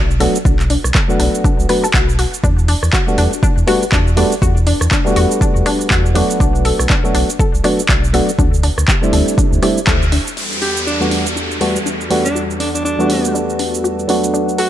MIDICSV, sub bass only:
0, 0, Header, 1, 2, 480
1, 0, Start_track
1, 0, Key_signature, 1, "minor"
1, 0, Tempo, 495868
1, 438, Time_signature, 4, 2, 24, 8
1, 14225, End_track
2, 0, Start_track
2, 0, Title_t, "Sub bass"
2, 0, Program_c, 0, 38
2, 0, Note_on_c, 0, 35, 90
2, 261, Note_off_c, 0, 35, 0
2, 437, Note_on_c, 0, 35, 100
2, 741, Note_off_c, 0, 35, 0
2, 816, Note_on_c, 0, 35, 95
2, 883, Note_off_c, 0, 35, 0
2, 1157, Note_on_c, 0, 35, 91
2, 1249, Note_off_c, 0, 35, 0
2, 1536, Note_on_c, 0, 35, 93
2, 1603, Note_off_c, 0, 35, 0
2, 1878, Note_on_c, 0, 35, 89
2, 2181, Note_off_c, 0, 35, 0
2, 2358, Note_on_c, 0, 40, 97
2, 2661, Note_off_c, 0, 40, 0
2, 2737, Note_on_c, 0, 40, 94
2, 2803, Note_off_c, 0, 40, 0
2, 3078, Note_on_c, 0, 40, 92
2, 3170, Note_off_c, 0, 40, 0
2, 3457, Note_on_c, 0, 40, 96
2, 3523, Note_off_c, 0, 40, 0
2, 3798, Note_on_c, 0, 40, 92
2, 4101, Note_off_c, 0, 40, 0
2, 4277, Note_on_c, 0, 40, 97
2, 4581, Note_off_c, 0, 40, 0
2, 4656, Note_on_c, 0, 40, 90
2, 4723, Note_off_c, 0, 40, 0
2, 4997, Note_on_c, 0, 40, 88
2, 5089, Note_off_c, 0, 40, 0
2, 5376, Note_on_c, 0, 40, 92
2, 5443, Note_off_c, 0, 40, 0
2, 5718, Note_on_c, 0, 40, 91
2, 6021, Note_off_c, 0, 40, 0
2, 6198, Note_on_c, 0, 35, 99
2, 6501, Note_off_c, 0, 35, 0
2, 6577, Note_on_c, 0, 35, 94
2, 6643, Note_off_c, 0, 35, 0
2, 6917, Note_on_c, 0, 35, 88
2, 7009, Note_off_c, 0, 35, 0
2, 7296, Note_on_c, 0, 35, 97
2, 7363, Note_off_c, 0, 35, 0
2, 7638, Note_on_c, 0, 35, 90
2, 7941, Note_off_c, 0, 35, 0
2, 8118, Note_on_c, 0, 38, 99
2, 8421, Note_off_c, 0, 38, 0
2, 8497, Note_on_c, 0, 38, 94
2, 8563, Note_off_c, 0, 38, 0
2, 8837, Note_on_c, 0, 38, 91
2, 8929, Note_off_c, 0, 38, 0
2, 9217, Note_on_c, 0, 38, 95
2, 9283, Note_off_c, 0, 38, 0
2, 9558, Note_on_c, 0, 38, 91
2, 9861, Note_off_c, 0, 38, 0
2, 14225, End_track
0, 0, End_of_file